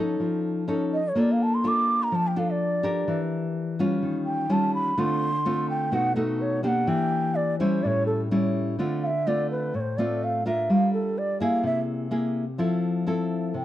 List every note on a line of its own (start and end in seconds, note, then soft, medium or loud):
0.00 0.18 F3 medium
0.00 0.65 C#4 medium
0.00 0.65 D#4 medium
0.00 0.65 A4 medium
0.20 1.13 F3 medium
0.68 1.00 C#4 medium
0.68 1.00 D#4 medium
0.68 1.00 A4 medium
0.94 1.10 D#5 medium
1.08 1.21 C#5 medium
1.15 2.09 A#3 medium
1.15 1.60 D4 medium
1.15 1.60 F4 soft
1.15 1.60 A4 medium
1.20 1.33 D5 medium
1.32 1.44 F5 medium
1.43 1.56 A5 medium
1.54 1.69 C6 medium
1.64 2.32 D4 medium
1.64 2.32 F4 medium
1.64 2.32 A4 medium
1.64 2.04 D6 medium
2.03 2.16 A#5 medium
2.12 3.05 F3 medium
2.12 2.29 A5 medium
2.27 2.40 G5 medium
2.36 2.80 D4 medium
2.36 2.80 F4 medium
2.36 2.80 A4 medium
2.36 2.52 F5 medium
2.51 3.20 D5 medium
2.83 3.75 D4 medium
2.83 3.75 G4 medium
2.83 3.75 A#4 medium
3.08 4.00 E3 medium
3.79 4.46 G3 medium
3.79 4.47 C#4 medium
3.79 4.47 F4 medium
4.02 4.95 D#3 medium
4.26 4.53 G5 medium
4.49 4.95 G3 medium
4.49 4.95 C#4 medium
4.49 4.96 F4 medium
4.49 4.74 A5 medium
4.74 5.01 B5 medium
4.98 5.90 D3 medium
4.98 5.28 A3 medium
4.98 5.28 C4 medium
4.98 5.28 F4 medium
4.98 5.69 C6 loud
5.45 5.91 A3 medium
5.45 5.91 C4 medium
5.45 5.91 F4 medium
5.70 5.96 G5 medium
5.92 6.85 B2 medium
5.92 6.12 A3 soft
5.92 6.12 D#4 medium
5.92 6.13 F#4 medium
5.92 6.15 F#5 medium
6.16 6.60 A3 medium
6.16 6.60 D#4 medium
6.16 6.60 F#4 medium
6.16 6.43 A4 soft
6.41 6.63 C#5 medium
6.63 7.55 A#3 medium
6.63 7.55 D4 medium
6.63 7.56 G4 medium
6.63 6.68 G5 medium
6.67 6.89 F#5 medium
6.87 7.81 E3 medium
6.87 7.37 G5 medium
7.35 7.58 D5 medium
7.59 8.27 G3 medium
7.59 8.27 C#4 medium
7.59 8.28 E4 medium
7.59 7.85 C5 medium
7.83 8.77 A2 medium
7.83 8.06 C#5 medium
7.83 7.88 D5 medium
8.06 8.21 A4 medium
8.31 8.77 G3 medium
8.31 8.77 C#4 medium
8.31 8.77 E4 medium
8.79 9.72 D3 medium
8.79 9.09 A3 soft
8.79 9.10 C4 medium
8.79 9.10 F4 medium
9.03 9.29 E5 medium
9.03 9.07 F5 medium
9.27 9.74 A3 medium
9.27 9.74 C4 medium
9.27 9.74 F4 medium
9.27 9.50 D5 medium
9.51 9.77 B4 medium
9.74 10.67 A2 medium
9.74 9.81 C#5 medium
9.80 9.99 C5 medium
9.97 10.42 A3 medium
9.97 10.42 C4 medium
9.97 10.42 F4 medium
9.97 10.25 D5 medium
10.24 10.46 F5 medium
10.46 11.37 D4 medium
10.46 11.37 F4 medium
10.46 11.37 A#4 medium
10.46 10.73 E5 medium
10.70 11.62 G3 medium
10.70 10.93 F5 medium
10.93 11.20 A4 medium
11.18 11.41 D5 medium
11.40 12.08 A#3 medium
11.40 12.09 E4 medium
11.40 12.09 G#4 medium
11.40 11.63 F5 medium
11.63 12.57 C3 medium
11.63 11.80 E5 medium
12.11 12.44 A#3 medium
12.11 12.44 E4 medium
12.11 12.44 G#4 medium
12.58 13.52 F3 medium
12.58 13.03 C4 medium
12.58 13.03 E4 medium
12.58 13.03 A4 medium
13.07 13.65 C4 medium
13.07 13.65 E4 medium
13.07 13.65 A4 medium
13.54 13.65 C3 medium
13.54 13.65 G5 medium